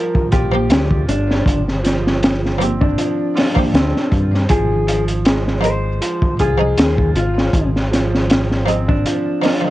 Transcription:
Already playing: F3 G3 A#4
0.15 kick
0.32 A#1 F4 G4, kick, closed hi-hat
0.52 F3 A#3 G4
0.69 D2, snare, closed hi-hat
0.91 kick
1.08 G1 D4, closed hi-hat
1.31 snare
1.46 G1, kick, closed hi-hat
1.68 snare
1.84 F3, snare, closed hi-hat
2.07 snare
2.23 snare, closed hi-hat
2.46 snare
2.59 F3 A#3 C4 G4, closed hi-hat
2.81 D4, kick
2.98 F3, closed hi-hat
3.36 F4, snare, open hi-hat
3.55 F3 A#3 G4, kick
3.74 D2 C4, snare, closed hi-hat
3.97 snare
4.12 G2, kick, closed hi-hat
4.35 snare
4.49 G#1 F3 G#4, kick, closed hi-hat
4.87 F3, closed hi-hat
5.08 closed hi-hat
5.25 G#3, snare, closed hi-hat
5.48 snare
5.61 F3 D#4 G#4, closed hi-hat
5.65 C5
6.01 F3, closed hi-hat
6.22 kick
6.39 C2 F4 G#4, kick, closed hi-hat
6.58 F3 D#4 G#4
6.77 D#2, snare, closed hi-hat
6.98 kick
7.15 G#1 F4, closed hi-hat
7.38 snare
7.53 G#1, kick, closed hi-hat
7.76 snare
7.92 F3, snare, closed hi-hat
8.15 snare
8.30 snare, closed hi-hat
8.52 snare
8.66 F3 C4 D#4 G#4, closed hi-hat
8.88 D4, kick
9.06 F3, closed hi-hat
9.41 F3 D#4 F4 A#4, open hi-hat
9.46 snare
9.61 D#3 F3

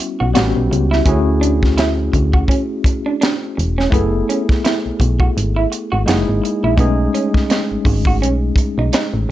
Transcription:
Already playing: G3 B3 C#4 E4 F#4
0.00 closed hi-hat
0.20 B1 F#4
0.34 A1 G3 B3 C4 F#4 G4, snare, closed hi-hat
0.42 C#4
0.57 B1
0.71 C#2, muted clean electric guitar stroke, closed hi-hat
0.91 E4, snare
1.05 D2 A3 C#4 E4 F#4, kick, closed hi-hat
1.09 G#4
1.41 D4, closed hi-hat
1.63 kick, snare
1.78 E4, snare, closed hi-hat
2.13 D2, muted clean electric guitar stroke, kick, closed hi-hat
2.33 F#4, kick
2.48 C#4, kick, closed hi-hat
2.84 muted clean electric guitar stroke, kick, closed hi-hat
3.06 D4
3.21 D4, snare, closed hi-hat
3.57 E1, muted clean electric guitar stroke, closed hi-hat
3.78 C#4, snare
3.90 F#1 A3 B3 E4 G#4, kick, closed hi-hat
3.94 A4
4.29 C#4, closed hi-hat
4.49 kick, snare
4.65 E4, snare, closed hi-hat
4.86 B1
5.00 B1, muted clean electric guitar stroke, kick, closed hi-hat
5.20 F#4, kick
5.37 G#1, closed hi-hat
5.56 E4
5.72 muted clean electric guitar stroke, closed hi-hat
5.92 G#1 F#4
6.06 F#1 G#3 A#3 D#4 E4 F#4 G#4, snare, closed hi-hat
6.29 G#1
6.44 muted clean electric guitar stroke, closed hi-hat
6.64 A#1 E4
6.77 B1 G#3 A3 B3 C#4 D#4 G#4, kick, closed hi-hat
7.14 C#4, closed hi-hat
7.34 kick, snare
7.50 D#4, snare, closed hi-hat
7.71 G#1
7.85 G#1, muted clean electric guitar stroke, kick, open hi-hat
8.05 F#4, kick
8.22 B1 C#4, closed hi-hat
8.56 muted clean electric guitar stroke, kick, closed hi-hat
8.78 B1 D#4
8.93 D#4, snare, closed hi-hat
9.14 A1

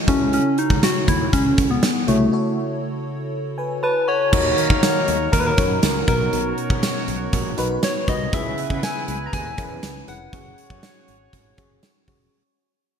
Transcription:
Already playing: F#4
0.07 C#2 C#3 C#4 E4 F#4 A4 C#5, kick, closed hi-hat
0.33 C#4, closed hi-hat
0.58 D#4, closed hi-hat
0.70 C#2, kick
0.83 F#4, snare, closed hi-hat, tambourine
1.08 D#2 E4, kick, closed hi-hat
1.33 C#2 C#4, kick, closed hi-hat
1.58 C#2, kick, closed hi-hat
1.71 B3
1.83 snare, closed hi-hat, tambourine
2.07 C2 C#3 A3 E4 F#4 A4 C#5, closed hi-hat
2.32 E4 F#4 A4 C#5
3.58 B4 G#5
3.83 B4 C#5 A5 B5
4.08 A4 C#5 F#5 C#6
4.32 D#2 D#3 A#3 D#4 F#4 A#4 C#5, kick, crash
4.58 closed hi-hat
4.70 D#3, kick
4.83 snare, closed hi-hat, tambourine
5.08 D#2, closed hi-hat
5.32 D#2 A#4 A#5, kick, closed hi-hat
5.40 B4 B5
5.46 A#4 A#5
5.57 F#2 D#4 F#4 A#4 C#5, kick, closed hi-hat
5.83 C#2, snare, closed hi-hat, tambourine
6.07 B1 B2 B3 C#4 D#4 F#4 A#4 C#5 A#5, kick, closed hi-hat
6.33 B1, closed hi-hat
6.58 closed hi-hat
6.70 B2, kick
6.83 snare, closed hi-hat, tambourine
7.08 B1, closed hi-hat
7.33 A#1, kick, closed hi-hat
7.57 B1 D#4 F#4 A#4 B4, closed hi-hat
7.83 C#5 C#6, snare, closed hi-hat, tambourine
8.08 C2 D#4 F#4 A#4 B4 D#5 D#6, kick, closed hi-hat
8.32 C#2 C#3 B3 C#4 E4 G#4 B4 E5 E6, kick, closed hi-hat
8.58 closed hi-hat
8.70 C#3, kick
8.83 G#5 G#6, snare, closed hi-hat, tambourine
9.08 C#2, closed hi-hat
9.26 A#5 A#6
9.33 D#2 G#5 G#6, kick, closed hi-hat
9.57 E2 C#4 E4 G#4 A#4, kick, closed hi-hat
9.64 B4
9.83 C#2, snare, closed hi-hat, tambourine
10.07 F1 C#4 E4 G#4 B4 F#5 F#6, closed hi-hat
10.33 F#1 C#4 F#4 G#4 C#5, kick, closed hi-hat
10.58 closed hi-hat
10.70 F#2, kick
10.83 snare, closed hi-hat, tambourine
11.08 G#1, closed hi-hat
11.33 G#1, kick, closed hi-hat
11.57 F#1 C#4 F#4 G#4 C#5, kick, closed hi-hat
11.83 snare, closed hi-hat, tambourine
12.07 F1 C#4 F#4 G#4 C#5, kick, open hi-hat

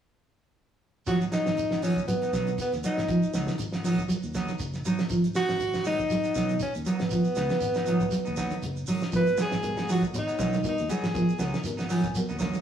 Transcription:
1.07 G#1 F3 F#3 B3 D#4 F#4, kick, closed hi-hat, shekere
1.21 closed hi-hat, shekere
1.31 F#3 B3 D#4, snare, closed hi-hat, shekere
1.46 G#1 D#3, snare, shekere
1.57 closed hi-hat, shekere
1.71 G#1 B3 D#4, snare, shekere
1.82 F3 F#3 B3 C#4 D#4, open hi-hat, shekere
1.96 kick, closed hi-hat, shekere
2.08 G#1 F#3 B3, closed hi-hat, shekere
2.22 B3 D#4, closed hi-hat, shekere
2.33 B1 F#3 B3 D#4, kick, snare, closed hi-hat, shekere
2.47 D#3, closed hi-hat, shekere
2.58 B3, muted fingered electric bass stroke, kick, closed hi-hat, shekere
2.72 D#2, snare, closed hi-hat, shekere
2.83 F#3 B3 D#4, closed hi-hat, shekere
2.97 G#1, snare, closed hi-hat, shekere
3.08 F3, kick, closed hi-hat, shekere
3.23 shekere
3.34 C#2 F#3 B3 D#4, snare, closed hi-hat, shekere
3.47 D#3, snare, shekere
3.58 G#1, closed hi-hat, shekere
3.72 B3 D#4, snare, shekere
3.84 F3 F#3 B3 D#4, snare, open hi-hat, shekere
3.98 G#1, kick, shekere
4.09 F#3, muted fingered electric bass stroke, closed hi-hat, shekere
4.23 D#2, shekere
4.34 F#3 B3 D#4, kick, snare, closed hi-hat, shekere
4.48 D#3, snare, closed hi-hat, shekere
4.59 F#1, kick, closed hi-hat, shekere
4.73 snare, shekere
4.85 G#1 F#3 B3 D#4, closed hi-hat, shekere
4.98 snare, closed hi-hat, shekere
5.09 G#1 F3, kick, closed hi-hat, shekere
5.24 closed hi-hat, shekere
5.35 B3 D#4 F#4, muted clean electric guitar stroke, snare, closed hi-hat, shekere
5.48 G#1 D#3, snare, shekere
5.60 closed hi-hat, shekere
5.73 G#1 B3 D#4, snare, shekere
5.84 F#3 G#3 B3 D#4, open hi-hat, shekere
5.99 kick, closed hi-hat, shekere
6.10 G#1 F#3, closed hi-hat, shekere
6.24 B3 D#4, closed hi-hat, shekere
6.35 B1 F#3 B3 D#4, kick, snare, closed hi-hat, shekere
6.49 D#3, closed hi-hat, shekere
6.59 C#4, muted fingered electric bass stroke, kick, closed hi-hat, shekere
6.74 D#2, closed hi-hat, shekere
6.85 F#3 B3 D#4, closed hi-hat, shekere
6.99 G#1, snare, closed hi-hat, shekere
7.10 F3, kick, closed hi-hat, shekere
7.24 shekere
7.35 C#2 B3 D#4, muted clean electric guitar stroke, snare, closed hi-hat, shekere
7.49 D#3, snare, shekere
7.61 G#1, closed hi-hat, shekere
7.74 B3 D#4, snare, shekere
7.86 F3 F#3 B3 D#4, closed hi-hat, shekere
8.00 G#1, kick, closed hi-hat, shekere
8.11 F#3, muted fingered electric bass stroke, closed hi-hat, shekere
8.25 D#2 B3 D#4, shekere
8.36 F#3 B3 D#4, kick, snare, closed hi-hat, shekere
8.50 D#3, closed hi-hat, shekere
8.62 F#1, closed hi-hat, shekere
8.76 shekere
8.87 G#1 F#3 D#4, open hi-hat, shekere
9.01 snare, closed hi-hat, shekere
9.12 G#1 F3 B3 F#4 A#4 B4, kick, closed hi-hat, shekere
9.27 closed hi-hat, shekere
9.37 F#3 B3 D#4, snare, closed hi-hat, high conga, shekere
9.41 G#4
9.52 G#1 D#3, snare, shekere
9.63 B3 F#4 A#4, closed hi-hat, high conga, shekere
9.77 G#1 B3 D#4, snare, shekere
9.88 F3 F#3 B3 D#4, open hi-hat, shekere
9.92 F#4
10.02 kick, closed hi-hat, shekere
10.13 G#1 B3 F#4 C#5, muted clean electric guitar stroke, closed hi-hat, shekere
10.18 D#4
10.27 B3 D#4, closed hi-hat, shekere
10.38 B1 F#3 B3 D#4, kick, snare, closed hi-hat, high conga, shekere
10.53 D#3, snare, closed hi-hat, high conga, shekere
10.63 B3 F#4 A#4, muted fingered electric bass stroke, kick, closed hi-hat, high conga, shekere
10.68 D#4
10.78 D#2, closed hi-hat, shekere
10.89 F#3 B3 D#4 G#4, closed hi-hat, high conga, shekere
11.03 G#1, snare, closed hi-hat, shekere
11.13 F3 B3 F#4 A#4, kick, closed hi-hat, shekere
11.29 shekere
11.39 C#2 F#3 B3 D#4, snare, closed hi-hat, high conga, shekere
11.53 D#3, snare, shekere
11.64 G#1 B3 F#4 A#4, closed hi-hat, shekere
11.77 B3 D#4, snare, shekere
11.89 F3 F#3 B3 D#4 G#5, open hi-hat, shekere
12.04 G#1, kick, snare, closed hi-hat, shekere
12.15 F#3 B3 F#4 A#4 F#5, muted fingered electric bass stroke, closed hi-hat, shekere
12.29 D#2 B3 D#4, shekere
12.38 F#3 D#4 F5, muted clean electric guitar stroke, kick, snare, closed hi-hat, high conga, shekere
12.53 D#3, closed hi-hat, high conga, shekere

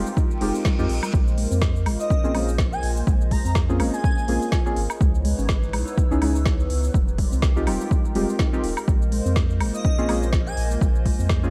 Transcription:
Already playing: G#3 D#4 F4 G4 A#4 D#5 G5
0.07 shaker
0.17 D#4, kick, reverse cymbal, shaker
0.31 shaker
0.41 F1 G#3 C4 D#4 F4 G4 G#4, open hi-hat
0.54 C4, open hi-hat, shaker
0.65 G3, kick, snare, shaker
0.78 F2 G#3 C4 D#4 F4 G4, shaker
0.89 A#1, open hi-hat
1.03 G3, high woodblock, shaker
1.14 A#1 G#3 A#3 F4 C5, kick, shaker
1.28 shaker
1.38 G#3, open hi-hat
1.51 F2 C4, shaker
1.62 kick, snare, shaker
1.76 shaker
1.86 G#1 G#3, open hi-hat, high woodblock
2.00 D#5, shaker
2.10 C#4, kick, shaker
2.24 A#1 A#3 C4 C#4 F4 G#4, shaker
2.34 G#3 A#3 C4 C#4 F4 G#4, open hi-hat, high woodblock
2.49 shaker
2.58 F4, kick, snare, shaker
2.72 G#5, shaker
2.83 A#1, open hi-hat
2.97 shaker
3.07 A#1 G#3 G#4, kick, shaker
3.21 shaker
3.31 G#3 A#5, kick, open hi-hat
3.45 F2 C4 A#5, shaker
3.55 kick, snare, shaker
3.69 A#3 C4 C#4 F4 G#4, shaker
3.80 G#1 G#3 A#3 C4 C#4 F4 G#4, open hi-hat, high woodblock
3.93 G#5, shaker
4.04 C#4, kick, shaker
4.18 shaker
4.28 A#1 G#3 A#3 C4 C#4 F4 G#4, open hi-hat
4.42 shaker
4.52 F4, kick, snare, shaker
4.65 A#3 C4 C#4 F4 G#4, shaker
4.76 G#1, open hi-hat
4.90 high woodblock, shaker
5.01 C#2 G#3 B3 D#4 E4 B4 C#5, kick, shaker
5.15 shaker
5.25 G#3, open hi-hat
5.38 G#1 C#4, shaker
5.49 kick, snare, shaker
5.62 E6, shaker
5.73 B1 G#3, open hi-hat, high woodblock
5.87 shaker
5.97 D#4, kick, shaker
6.11 C#2 B3 C#4 D#4 E4 G#4, shaker
6.21 G#3 B3 C#4 D#4 E4 G#4, open hi-hat, high woodblock
6.36 shaker
6.46 E4, kick, snare, shaker
6.60 shaker
6.70 C#2, open hi-hat
6.84 shaker
6.94 F1 G3 G#3 D#4 F4 G4 A#4, kick, shaker
7.08 shaker
7.17 G3 G5, kick, open hi-hat
7.32 C2 C4, shaker
7.42 kick, snare, shaker
7.56 G#3 C4 D#4 F4 G4, shaker
7.64 D#1 G3 G#3 C4 D#4 F4 G4 D#5, open hi-hat, high woodblock
7.81 shaker
7.91 D#4, kick, shaker
8.05 shaker
8.15 F1 G3 G#3 C4 D#4 F4 G4, open hi-hat
8.29 shaker
8.39 D#4, kick, snare, shaker
8.53 G#3 C4 D#4 F4 G4, shaker
8.64 D#1, open hi-hat
8.77 high woodblock, shaker
8.88 A#1 G#3 A#3 F4 C5, kick, shaker
9.02 shaker
9.12 G#3, open hi-hat
9.25 F2 C4, shaker
9.36 kick, snare, shaker
9.50 shaker
9.60 G#1 G#3, open hi-hat, high woodblock
9.74 D#5, shaker
9.85 C#4, kick, shaker
9.98 A#1 A#3 C4 C#4 F4 G#4, shaker
10.09 G#3 A#3 C4 C#4 F4 G#4, open hi-hat, high woodblock
10.23 shaker
10.33 F4, kick, snare, shaker
10.46 G#5, shaker
10.57 A#1 G#5, open hi-hat
10.71 shaker
10.81 A#1 G#3, kick, shaker
10.95 shaker
11.06 G#3, kick, open hi-hat
11.19 F2 C4, shaker
11.29 kick, snare, shaker
11.43 A#3 C4 C#4 F4 G#4, shaker

